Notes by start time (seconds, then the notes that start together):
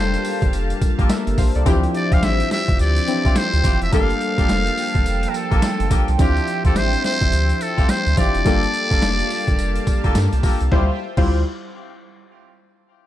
Already playing: F1 G3 A#3 D4 F4 G4 A4 C5 F5 A5
0.14 closed hi-hat
0.25 open hi-hat, tambourine
0.42 G1, kick, closed hi-hat
0.53 F1, closed hi-hat, tambourine
0.70 closed hi-hat
0.82 kick, closed hi-hat, tambourine
0.98 A1 A#3 F4 G4 A4, kick, closed hi-hat
1.09 A#4 E5, snare, closed hi-hat, tambourine
1.27 G1, closed hi-hat
1.38 A#1 C5 F5, kick, open hi-hat, tambourine
1.55 C2 A4 D5, closed hi-hat
1.65 D2 E3 F3 C4 D4 E4 F4 G4 C5 E5 G5, kick, closed hi-hat, tambourine
1.72 F3
1.83 closed hi-hat
1.95 D5, closed hi-hat
2.11 D2 C4 E4 F4 G4 F5, kick, closed hi-hat
2.23 A1 E5, snare, closed hi-hat, tambourine
2.40 closed hi-hat
2.51 E5, snare, open hi-hat, tambourine
2.68 G1, kick, closed hi-hat
2.79 D2 D5, closed hi-hat, tambourine
2.96 closed hi-hat
3.08 E3 C4 D4 E4 G4, closed hi-hat, tambourine
3.14 F3
3.25 C2 C4 E4 F4 G4, kick, closed hi-hat
3.36 C5, snare, closed hi-hat, tambourine
3.53 D2, closed hi-hat
3.64 G1 C4 E4 F4 G4, kick, closed hi-hat, tambourine
3.81 F1 E5, closed hi-hat
3.92 G1 G3 A3 A#3 D4 F4 G4 A4 F5 G5 A5, kick, closed hi-hat, tambourine
3.99 A#3
4.10 closed hi-hat
4.21 closed hi-hat
4.38 F1 A#3 F4 G4 A4, kick, closed hi-hat
4.49 F1, snare, closed hi-hat, tambourine
4.66 closed hi-hat
4.77 open hi-hat, tambourine
4.95 G1, kick, closed hi-hat
5.06 F1, closed hi-hat, tambourine
5.23 closed hi-hat
5.30 A#4
5.34 A4, closed hi-hat, tambourine
5.51 A1 A#3 F4 G4 A4, kick, closed hi-hat
5.62 snare, closed hi-hat, tambourine
5.80 G1, closed hi-hat
5.91 A#1 A#3 F4 G4 A4, kick, closed hi-hat, tambourine
6.08 C2, closed hi-hat
6.18 D2 F3 C4 D4 E4 F4 G4 C5 E5, kick, closed hi-hat, tambourine
6.37 closed hi-hat
6.47 closed hi-hat
6.64 D2 C4 E4 F4 G4 A4, kick, closed hi-hat
6.76 A1 C5, snare, closed hi-hat, tambourine
6.93 closed hi-hat
7.04 C5, snare, open hi-hat, tambourine
7.21 G1, kick, closed hi-hat
7.32 D2, closed hi-hat, tambourine
7.49 closed hi-hat
7.61 A4, closed hi-hat, tambourine
7.78 C2 C4 E4 F4 G4, kick, closed hi-hat
7.89 C5, snare, closed hi-hat, tambourine
8.06 D2, closed hi-hat
8.17 G1 F3 C4 D4 E4 F4 G4 D5, kick, closed hi-hat, tambourine
8.34 F1, closed hi-hat
8.45 G1 G3 A#3 D4 F4 G4 A4 F5 A5, kick, closed hi-hat, tambourine
8.63 closed hi-hat
8.74 closed hi-hat
8.91 F1 A#3 F4 G4 A4, kick, closed hi-hat
9.02 F1, snare, closed hi-hat, tambourine
9.19 closed hi-hat
9.30 open hi-hat, tambourine
9.48 G1, kick, closed hi-hat
9.59 F1, closed hi-hat, tambourine
9.76 closed hi-hat
9.87 kick, closed hi-hat, tambourine
10.04 G1 A#3 F4 G4 A4, kick, closed hi-hat
10.15 G2, snare, closed hi-hat, tambourine
10.33 C2, closed hi-hat
10.43 A#3 F4 G4 A4, kick, open hi-hat, tambourine
10.61 C2, closed hi-hat
10.71 D2 G3 C4 E4 F4 G4 C5 E5 G5, kick, snare
11.17 D2 G3 C4 E4 F4 G4 C5, kick, crash